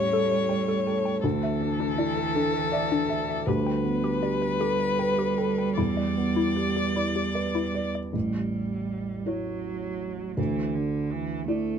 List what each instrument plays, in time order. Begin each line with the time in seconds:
Already playing: felt piano A2 C#4 G4, cello G3, violin C#5
0.12 felt piano A4, synth pluck A4
0.31 synth pluck C#5
0.49 felt piano C#5, synth pluck G5
0.68 synth pluck A4
0.87 felt piano A4, synth pluck G5
1.05 synth pluck G5
1.22 felt piano D2, cello E3, synth pluck D4, violin A4
1.43 synth pluck E5
1.61 felt piano D4
1.80 synth pluck D4
1.98 felt piano E4, synth pluck D5
2.17 synth pluck A4
2.35 synth pluck D4, felt piano A4
2.54 synth pluck A4
2.72 felt piano D5, synth pluck E5
2.92 synth pluck D4
3.09 felt piano A4, synth pluck E5
3.29 synth pluck E5
3.47 felt piano D2, cello G3, synth pluck G4, violin B4
3.67 synth pluck G5
3.84 felt piano B3
4.04 synth pluck G4
4.22 felt piano G4, synth pluck D5
4.42 synth pluck B4
4.60 synth pluck G4, felt piano A4
4.80 synth pluck B4
4.99 felt piano B4, synth pluck G5
5.19 synth pluck G4
5.38 felt piano A4, synth pluck G5
5.58 synth pluck G5
5.77 felt piano E2, synth pluck E4, violin D5
5.97 synth pluck D5
6.17 felt piano B3
6.36 synth pluck E4
6.56 felt piano G4, synth pluck B4
6.76 synth pluck G4
6.95 synth pluck E4, felt piano D5
7.16 synth pluck G4
7.35 felt piano B4, synth pluck D5
7.55 synth pluck E4
7.74 felt piano D5, synth pluck D5
7.95 synth pluck D5
8.13 felt piano A1, cello G3
9.26 cello F#3, felt piano E4 C#5
10.37 felt piano D2, cello E3
10.74 cello D3
11.11 cello E3
11.48 cello A3, felt piano E4 D5